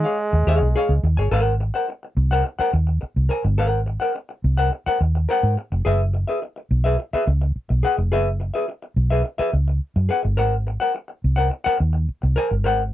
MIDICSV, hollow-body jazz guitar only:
0, 0, Header, 1, 3, 480
1, 0, Start_track
1, 0, Tempo, 566038
1, 1121, Time_signature, 4, 2, 24, 8
1, 10970, End_track
2, 0, Start_track
2, 0, Title_t, "Hollow-body jazz guitar"
2, 0, Program_c, 0, 26
2, 33, Note_on_c, 0, 77, 59
2, 43, Note_on_c, 0, 73, 56
2, 49, Note_on_c, 0, 68, 51
2, 141, Note_off_c, 0, 77, 0
2, 146, Note_off_c, 0, 73, 0
2, 149, Note_off_c, 0, 68, 0
2, 399, Note_on_c, 0, 68, 79
2, 407, Note_on_c, 0, 73, 88
2, 413, Note_on_c, 0, 77, 86
2, 508, Note_off_c, 0, 77, 0
2, 516, Note_off_c, 0, 73, 0
2, 569, Note_off_c, 0, 68, 0
2, 641, Note_on_c, 0, 68, 94
2, 650, Note_on_c, 0, 73, 86
2, 655, Note_on_c, 0, 77, 85
2, 773, Note_off_c, 0, 68, 0
2, 778, Note_off_c, 0, 73, 0
2, 781, Note_off_c, 0, 77, 0
2, 994, Note_on_c, 0, 80, 62
2, 1006, Note_on_c, 0, 73, 52
2, 1010, Note_on_c, 0, 68, 57
2, 1101, Note_off_c, 0, 80, 0
2, 1107, Note_off_c, 0, 73, 0
2, 1109, Note_off_c, 0, 68, 0
2, 1115, Note_on_c, 0, 70, 92
2, 1120, Note_on_c, 0, 72, 93
2, 1130, Note_on_c, 0, 78, 90
2, 1287, Note_off_c, 0, 70, 0
2, 1290, Note_off_c, 0, 72, 0
2, 1295, Note_off_c, 0, 78, 0
2, 1475, Note_on_c, 0, 78, 66
2, 1484, Note_on_c, 0, 72, 63
2, 1490, Note_on_c, 0, 70, 52
2, 1581, Note_off_c, 0, 78, 0
2, 1586, Note_off_c, 0, 72, 0
2, 1589, Note_off_c, 0, 70, 0
2, 1959, Note_on_c, 0, 78, 86
2, 1969, Note_on_c, 0, 72, 79
2, 1974, Note_on_c, 0, 70, 69
2, 2068, Note_off_c, 0, 70, 0
2, 2078, Note_off_c, 0, 72, 0
2, 2081, Note_off_c, 0, 78, 0
2, 2193, Note_on_c, 0, 78, 94
2, 2201, Note_on_c, 0, 72, 78
2, 2210, Note_on_c, 0, 70, 77
2, 2305, Note_off_c, 0, 70, 0
2, 2311, Note_off_c, 0, 72, 0
2, 2314, Note_off_c, 0, 78, 0
2, 2791, Note_on_c, 0, 70, 59
2, 2799, Note_on_c, 0, 72, 68
2, 2807, Note_on_c, 0, 80, 68
2, 2899, Note_off_c, 0, 70, 0
2, 2903, Note_off_c, 0, 72, 0
2, 2907, Note_off_c, 0, 80, 0
2, 3036, Note_on_c, 0, 70, 82
2, 3042, Note_on_c, 0, 72, 77
2, 3048, Note_on_c, 0, 78, 80
2, 3207, Note_off_c, 0, 70, 0
2, 3211, Note_off_c, 0, 72, 0
2, 3214, Note_off_c, 0, 78, 0
2, 3390, Note_on_c, 0, 78, 70
2, 3402, Note_on_c, 0, 72, 59
2, 3408, Note_on_c, 0, 70, 57
2, 3499, Note_off_c, 0, 78, 0
2, 3505, Note_off_c, 0, 72, 0
2, 3508, Note_off_c, 0, 70, 0
2, 3879, Note_on_c, 0, 78, 83
2, 3887, Note_on_c, 0, 72, 68
2, 3893, Note_on_c, 0, 70, 62
2, 3991, Note_off_c, 0, 70, 0
2, 3997, Note_off_c, 0, 72, 0
2, 4002, Note_off_c, 0, 78, 0
2, 4125, Note_on_c, 0, 78, 83
2, 4132, Note_on_c, 0, 72, 67
2, 4139, Note_on_c, 0, 70, 66
2, 4238, Note_off_c, 0, 70, 0
2, 4243, Note_off_c, 0, 72, 0
2, 4246, Note_off_c, 0, 78, 0
2, 4483, Note_on_c, 0, 70, 79
2, 4494, Note_on_c, 0, 72, 83
2, 4501, Note_on_c, 0, 78, 92
2, 4703, Note_off_c, 0, 70, 0
2, 4708, Note_off_c, 0, 72, 0
2, 4712, Note_off_c, 0, 78, 0
2, 4960, Note_on_c, 0, 68, 86
2, 4968, Note_on_c, 0, 71, 85
2, 4974, Note_on_c, 0, 76, 85
2, 5093, Note_off_c, 0, 68, 0
2, 5097, Note_off_c, 0, 71, 0
2, 5100, Note_off_c, 0, 76, 0
2, 5321, Note_on_c, 0, 76, 67
2, 5330, Note_on_c, 0, 71, 59
2, 5336, Note_on_c, 0, 68, 58
2, 5425, Note_off_c, 0, 76, 0
2, 5429, Note_off_c, 0, 71, 0
2, 5432, Note_off_c, 0, 68, 0
2, 5800, Note_on_c, 0, 76, 86
2, 5809, Note_on_c, 0, 71, 78
2, 5815, Note_on_c, 0, 68, 73
2, 5916, Note_off_c, 0, 68, 0
2, 5921, Note_off_c, 0, 71, 0
2, 5926, Note_off_c, 0, 76, 0
2, 6049, Note_on_c, 0, 76, 83
2, 6056, Note_on_c, 0, 71, 76
2, 6062, Note_on_c, 0, 68, 72
2, 6153, Note_off_c, 0, 68, 0
2, 6157, Note_off_c, 0, 71, 0
2, 6164, Note_off_c, 0, 76, 0
2, 6640, Note_on_c, 0, 68, 78
2, 6648, Note_on_c, 0, 71, 70
2, 6654, Note_on_c, 0, 78, 93
2, 6759, Note_off_c, 0, 78, 0
2, 6762, Note_off_c, 0, 71, 0
2, 6774, Note_off_c, 0, 68, 0
2, 6883, Note_on_c, 0, 68, 87
2, 6890, Note_on_c, 0, 71, 93
2, 6895, Note_on_c, 0, 76, 93
2, 7015, Note_off_c, 0, 68, 0
2, 7019, Note_off_c, 0, 71, 0
2, 7021, Note_off_c, 0, 76, 0
2, 7239, Note_on_c, 0, 76, 63
2, 7249, Note_on_c, 0, 71, 65
2, 7251, Note_on_c, 0, 68, 58
2, 7344, Note_off_c, 0, 76, 0
2, 7349, Note_off_c, 0, 71, 0
2, 7351, Note_off_c, 0, 68, 0
2, 7720, Note_on_c, 0, 76, 81
2, 7728, Note_on_c, 0, 71, 77
2, 7736, Note_on_c, 0, 68, 64
2, 7828, Note_off_c, 0, 68, 0
2, 7834, Note_off_c, 0, 71, 0
2, 7841, Note_off_c, 0, 76, 0
2, 7956, Note_on_c, 0, 76, 86
2, 7964, Note_on_c, 0, 71, 86
2, 7972, Note_on_c, 0, 68, 72
2, 8066, Note_off_c, 0, 68, 0
2, 8073, Note_off_c, 0, 71, 0
2, 8079, Note_off_c, 0, 76, 0
2, 8554, Note_on_c, 0, 68, 71
2, 8563, Note_on_c, 0, 71, 74
2, 8570, Note_on_c, 0, 78, 81
2, 8671, Note_off_c, 0, 78, 0
2, 8676, Note_off_c, 0, 71, 0
2, 8692, Note_off_c, 0, 68, 0
2, 8795, Note_on_c, 0, 70, 77
2, 8800, Note_on_c, 0, 72, 73
2, 8808, Note_on_c, 0, 78, 73
2, 8932, Note_off_c, 0, 70, 0
2, 8935, Note_off_c, 0, 72, 0
2, 8939, Note_off_c, 0, 78, 0
2, 9158, Note_on_c, 0, 78, 74
2, 9168, Note_on_c, 0, 72, 67
2, 9172, Note_on_c, 0, 70, 58
2, 9265, Note_off_c, 0, 78, 0
2, 9270, Note_off_c, 0, 72, 0
2, 9272, Note_off_c, 0, 70, 0
2, 9634, Note_on_c, 0, 78, 79
2, 9643, Note_on_c, 0, 72, 74
2, 9650, Note_on_c, 0, 70, 70
2, 9743, Note_off_c, 0, 70, 0
2, 9751, Note_off_c, 0, 72, 0
2, 9754, Note_off_c, 0, 78, 0
2, 9873, Note_on_c, 0, 78, 90
2, 9885, Note_on_c, 0, 72, 83
2, 9889, Note_on_c, 0, 70, 76
2, 9986, Note_off_c, 0, 70, 0
2, 9990, Note_off_c, 0, 72, 0
2, 9995, Note_off_c, 0, 78, 0
2, 10481, Note_on_c, 0, 70, 83
2, 10490, Note_on_c, 0, 72, 84
2, 10495, Note_on_c, 0, 80, 95
2, 10602, Note_off_c, 0, 72, 0
2, 10602, Note_off_c, 0, 80, 0
2, 10616, Note_off_c, 0, 70, 0
2, 10720, Note_on_c, 0, 70, 69
2, 10730, Note_on_c, 0, 72, 77
2, 10738, Note_on_c, 0, 78, 87
2, 10856, Note_off_c, 0, 70, 0
2, 10861, Note_off_c, 0, 72, 0
2, 10865, Note_off_c, 0, 78, 0
2, 10970, End_track
3, 0, Start_track
3, 0, Title_t, "Muted hollow-body jazz guitar strokes"
3, 278, Note_on_c, 9, 29, 54
3, 362, Note_off_c, 9, 29, 0
3, 518, Note_on_c, 9, 29, 53
3, 603, Note_off_c, 9, 29, 0
3, 880, Note_on_c, 9, 29, 39
3, 965, Note_off_c, 9, 29, 0
3, 1359, Note_on_c, 9, 29, 43
3, 1444, Note_off_c, 9, 29, 0
3, 1599, Note_on_c, 9, 29, 43
3, 1684, Note_off_c, 9, 29, 0
3, 1721, Note_on_c, 9, 29, 37
3, 1806, Note_off_c, 9, 29, 0
3, 2078, Note_on_c, 9, 29, 35
3, 2163, Note_off_c, 9, 29, 0
3, 2315, Note_on_c, 9, 29, 48
3, 2400, Note_off_c, 9, 29, 0
3, 2434, Note_on_c, 9, 29, 41
3, 2519, Note_off_c, 9, 29, 0
3, 2551, Note_on_c, 9, 29, 38
3, 2636, Note_off_c, 9, 29, 0
3, 2921, Note_on_c, 9, 29, 44
3, 3006, Note_off_c, 9, 29, 0
3, 3276, Note_on_c, 9, 29, 36
3, 3361, Note_off_c, 9, 29, 0
3, 3519, Note_on_c, 9, 29, 39
3, 3604, Note_off_c, 9, 29, 0
3, 3637, Note_on_c, 9, 29, 46
3, 3722, Note_off_c, 9, 29, 0
3, 4001, Note_on_c, 9, 29, 41
3, 4086, Note_off_c, 9, 29, 0
3, 4248, Note_on_c, 9, 29, 40
3, 4333, Note_off_c, 9, 29, 0
3, 4369, Note_on_c, 9, 29, 54
3, 4454, Note_off_c, 9, 29, 0
3, 4727, Note_on_c, 9, 29, 39
3, 4812, Note_off_c, 9, 29, 0
3, 4850, Note_on_c, 9, 29, 44
3, 4935, Note_off_c, 9, 29, 0
3, 5203, Note_on_c, 9, 29, 38
3, 5287, Note_off_c, 9, 29, 0
3, 5445, Note_on_c, 9, 29, 40
3, 5530, Note_off_c, 9, 29, 0
3, 5565, Note_on_c, 9, 29, 45
3, 5649, Note_off_c, 9, 29, 0
3, 5926, Note_on_c, 9, 29, 35
3, 6011, Note_off_c, 9, 29, 0
3, 6163, Note_on_c, 9, 29, 44
3, 6248, Note_off_c, 9, 29, 0
3, 6288, Note_on_c, 9, 29, 49
3, 6373, Note_off_c, 9, 29, 0
3, 6522, Note_on_c, 9, 29, 42
3, 6607, Note_off_c, 9, 29, 0
3, 6762, Note_on_c, 9, 29, 43
3, 6847, Note_off_c, 9, 29, 0
3, 7122, Note_on_c, 9, 29, 39
3, 7207, Note_off_c, 9, 29, 0
3, 7362, Note_on_c, 9, 29, 43
3, 7447, Note_off_c, 9, 29, 0
3, 7483, Note_on_c, 9, 29, 41
3, 7568, Note_off_c, 9, 29, 0
3, 7838, Note_on_c, 9, 29, 31
3, 7923, Note_off_c, 9, 29, 0
3, 8076, Note_on_c, 9, 29, 33
3, 8161, Note_off_c, 9, 29, 0
3, 8206, Note_on_c, 9, 29, 41
3, 8291, Note_off_c, 9, 29, 0
3, 8446, Note_on_c, 9, 29, 38
3, 8531, Note_off_c, 9, 29, 0
3, 8675, Note_on_c, 9, 29, 45
3, 8760, Note_off_c, 9, 29, 0
3, 9046, Note_on_c, 9, 29, 38
3, 9131, Note_off_c, 9, 29, 0
3, 9283, Note_on_c, 9, 29, 49
3, 9367, Note_off_c, 9, 29, 0
3, 9397, Note_on_c, 9, 29, 46
3, 9481, Note_off_c, 9, 29, 0
3, 9754, Note_on_c, 9, 29, 39
3, 9838, Note_off_c, 9, 29, 0
3, 9997, Note_on_c, 9, 29, 41
3, 10081, Note_off_c, 9, 29, 0
3, 10117, Note_on_c, 9, 29, 55
3, 10201, Note_off_c, 9, 29, 0
3, 10362, Note_on_c, 9, 29, 45
3, 10447, Note_off_c, 9, 29, 0
3, 10605, Note_on_c, 9, 29, 39
3, 10690, Note_off_c, 9, 29, 0
3, 10970, End_track
0, 0, End_of_file